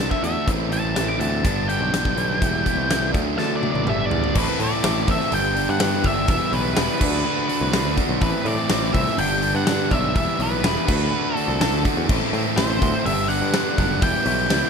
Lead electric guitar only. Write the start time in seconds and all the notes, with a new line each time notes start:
0.00 A5
0.11 E5
0.25 E5
0.73 A5
0.96 A5
1.08 D6
1.19 A5
1.69 G5
3.38 A5
3.56 D5
3.72 D5
3.89 E5
4.05 D5
4.38 B4
4.63 D5
5.11 E5
5.34 G5
5.70 F#5
6.06 E5
6.30 E5
6.53 B4
8.22 B4
8.47 D5
8.94 E5
9.19 G5
9.56 F#5
9.92 E5
10.17 E5
10.42 B4
11.36 A4
12.57 C5
13.06 E5
13.28 F#5
14.03 G5